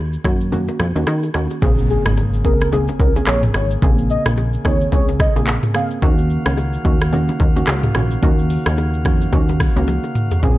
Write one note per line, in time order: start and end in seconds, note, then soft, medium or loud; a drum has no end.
0.00 0.17 D#2 medium
0.13 shaker medium
0.24 0.69 F#2 loud
0.24 0.41 D#3 medium
0.24 0.41 A#3 medium
0.24 0.41 C#4 medium
0.24 0.41 F#4 medium
0.24 kick medium
0.24 cross-stick medium
0.24 shaker soft
0.41 shaker medium
0.52 0.68 D#3 loud
0.52 0.69 A#3 medium
0.52 0.69 C#4 medium
0.52 0.69 F#4 loud
0.52 low conga medium
0.52 shaker medium
0.68 low bongo medium
0.68 shaker medium
0.80 0.93 F2 medium
0.80 cross-stick loud
0.80 low conga medium
0.80 shaker medium
0.95 1.05 D#2 medium
0.95 1.08 D#3 medium
0.95 1.08 A#3 medium
0.95 1.08 C#4 medium
0.95 1.08 F#4 medium
0.95 low bongo medium
0.95 shaker loud
1.07 1.30 D#3 loud
1.07 cross-stick loud
1.07 high bongo medium
1.07 shaker medium
1.23 high bongo medium
1.23 shaker medium
1.34 1.48 D#2 medium
1.34 1.51 D#3 medium
1.34 1.51 A#3 medium
1.34 1.51 C#4 medium
1.34 1.51 F#4 medium
1.34 cross-stick medium
1.34 shaker soft
1.50 high bongo medium
1.50 shaker loud
1.62 1.98 A#1 loud
1.62 2.13 C#3 loud
1.62 10.39 C#3 medium
1.62 2.13 A#3 medium
1.62 10.39 A#3 medium
1.62 2.14 C4 medium
1.62 5.99 G#4 medium
1.62 2.14 G#4 loud
1.62 kick loud
1.62 impact medium
1.62 low conga medium
1.62 shaker medium
1.78 shaker medium
1.90 2.03 G#4 medium
1.90 shaker medium
2.06 2.46 G#1 loud
2.06 cross-stick loud
2.06 low bongo medium
2.06 shaker medium
2.17 high bongo medium
2.17 shaker medium
2.33 shaker medium
2.44 2.90 C#2 medium
2.44 2.61 C#3 medium
2.44 2.61 A#3 medium
2.44 2.61 C4 medium
2.44 2.61 G#4 medium
2.44 2.68 A#4 medium
2.44 kick loud
2.44 shaker soft
2.61 cross-stick medium
2.61 shaker medium
2.72 2.89 C#3 loud
2.72 2.89 A#3 medium
2.72 2.89 C4 medium
2.72 2.89 G#4 loud
2.72 2.86 G#4 medium
2.72 low conga medium
2.72 shaker medium
2.88 low bongo medium
2.88 shaker medium
3.00 3.22 C#2 medium
3.00 3.14 A#4 medium
3.00 kick loud
3.00 low conga medium
3.00 shaker medium
3.15 3.28 C#3 medium
3.15 3.28 A#3 medium
3.15 3.28 C4 medium
3.15 3.28 G#4 medium
3.15 low bongo medium
3.15 shaker loud
3.27 3.50 A#1 loud
3.27 3.41 C#5 loud
3.27 cross-stick loud
3.27 clap loud
3.27 high bongo medium
3.27 shaker medium
3.43 mid tom loud
3.43 high bongo medium
3.43 shaker medium
3.54 3.77 G#1 loud
3.54 3.69 C#5 medium
3.54 cross-stick loud
3.54 shaker medium
3.71 shaker loud
3.82 4.18 A#1 loud
3.82 4.34 C#3 loud
3.82 4.34 A#3 medium
3.82 4.34 C4 medium
3.82 4.34 G#4 loud
3.82 kick loud
3.82 low conga medium
3.82 shaker medium
3.98 shaker medium
4.10 4.24 D#5 medium
4.10 shaker medium
4.26 4.58 A#1 medium
4.26 cross-stick loud
4.26 low bongo medium
4.26 shaker loud
4.37 high bongo medium
4.37 shaker medium
4.53 shaker medium
4.65 4.87 D#2 medium
4.65 4.81 C#3 medium
4.65 4.81 A#3 medium
4.65 4.81 C4 medium
4.65 4.82 G#4 medium
4.65 4.89 C#5 medium
4.65 kick loud
4.65 cross-stick medium
4.65 shaker medium
4.81 shaker loud
4.92 5.28 C#2 loud
4.92 5.09 C#3 loud
4.92 5.09 A#3 medium
4.92 5.09 C4 medium
4.92 5.09 G#4 loud
4.92 5.06 C#5 loud
4.92 kick medium
4.92 low conga medium
4.92 shaker medium
5.08 low bongo medium
5.08 shaker medium
5.20 5.34 D#5 medium
5.20 kick loud
5.20 cross-stick loud
5.20 low conga medium
5.20 shaker medium
5.36 5.58 A#1 medium
5.36 5.48 C#3 medium
5.36 5.48 A#3 medium
5.36 5.48 C4 medium
5.36 5.48 G#4 medium
5.36 low bongo medium
5.36 shaker loud
5.47 clap loud
5.47 high bongo medium
5.47 shaker medium
5.63 mid tom loud
5.63 high bongo medium
5.63 shaker medium
5.74 5.91 C#3 medium
5.74 5.91 A#3 medium
5.74 5.92 C4 medium
5.74 5.92 G#4 medium
5.74 5.89 F5 medium
5.74 cross-stick loud
5.74 shaker medium
5.91 shaker loud
6.02 6.38 D#2 loud
6.02 6.54 D#3 loud
6.02 10.39 D#3 medium
6.02 6.54 A#3 medium
6.02 6.54 C#4 medium
6.02 10.39 F#4 medium
6.02 6.54 F#4 loud
6.02 10.39 F5 medium
6.02 kick loud
6.02 low conga medium
6.02 shaker medium
6.18 shaker medium
6.30 shaker medium
6.46 6.78 C#2 medium
6.46 cross-stick loud
6.46 low bongo medium
6.46 shaker medium
6.57 high bongo medium
6.57 shaker medium
6.73 shaker medium
6.85 7.30 D#2 loud
6.85 7.01 D#3 medium
6.85 7.02 A#3 medium
6.85 7.02 C#4 medium
6.85 7.02 F#4 medium
6.85 kick loud
6.85 shaker soft
7.01 cross-stick loud
7.01 shaker medium
7.12 7.29 D#3 loud
7.12 7.29 A#3 medium
7.12 7.29 C#4 medium
7.12 7.29 F#4 loud
7.12 low conga medium
7.12 shaker medium
7.28 low bongo medium
7.28 shaker medium
7.40 7.62 D#2 loud
7.40 kick loud
7.40 low conga medium
7.40 shaker medium
7.56 7.68 D#3 medium
7.56 7.68 A#3 medium
7.56 7.68 C#4 medium
7.56 7.69 F#4 medium
7.56 low bongo medium
7.56 shaker loud
7.67 7.90 C#2 medium
7.67 cross-stick loud
7.67 clap loud
7.67 high bongo medium
7.67 shaker medium
7.83 mid tom loud
7.83 high bongo medium
7.83 shaker medium
7.95 8.18 A#1 loud
7.95 8.11 D#3 medium
7.95 8.12 A#3 medium
7.95 8.12 C#4 medium
7.95 8.12 F#4 medium
7.95 cross-stick loud
7.95 shaker medium
8.11 shaker loud
8.22 8.58 D#2 loud
8.22 8.74 D#3 loud
8.22 8.74 A#3 medium
8.22 8.74 C#4 medium
8.22 8.74 F#4 loud
8.22 kick loud
8.22 low conga medium
8.22 shaker medium
8.39 shaker medium
8.50 open hi-hat medium
8.50 shaker medium
8.66 9.07 D#2 loud
8.66 cross-stick loud
8.66 low bongo medium
8.66 shaker loud
8.78 high bongo medium
8.78 shaker medium
8.94 shaker medium
9.05 9.28 F2 loud
9.05 9.22 D#3 medium
9.05 9.22 A#3 medium
9.05 9.22 C#4 medium
9.05 9.22 F#4 medium
9.05 kick loud
9.05 cross-stick medium
9.05 shaker medium
9.21 shaker medium
9.32 9.68 D#2 loud
9.32 9.49 D#3 medium
9.32 9.49 A#3 medium
9.32 9.49 C#4 medium
9.32 9.49 F#4 loud
9.32 kick medium
9.32 low conga medium
9.32 shaker medium
9.49 low bongo medium
9.49 shaker medium
9.60 kick loud
9.60 cross-stick loud
9.60 open hi-hat medium
9.60 low conga medium
9.60 shaker medium
9.76 9.99 C#2 medium
9.76 9.88 D#3 medium
9.76 9.88 A#3 medium
9.76 9.89 C#4 medium
9.76 9.89 F#4 medium
9.76 low bongo medium
9.76 shaker loud
9.88 high tom medium
9.88 high bongo medium
9.88 shaker medium
10.04 high bongo medium
10.04 shaker medium
10.15 mid tom loud
10.15 shaker medium
10.31 floor tom loud
10.31 high bongo medium
10.31 shaker loud
10.42 10.58 A#1 loud
10.42 10.58 C#3 loud
10.42 10.58 C#3 medium
10.42 10.58 A#3 medium
10.42 10.58 C4 medium
10.42 10.58 G#4 medium
10.42 10.58 G#4 loud
10.42 kick loud
10.42 low conga medium
10.42 shaker medium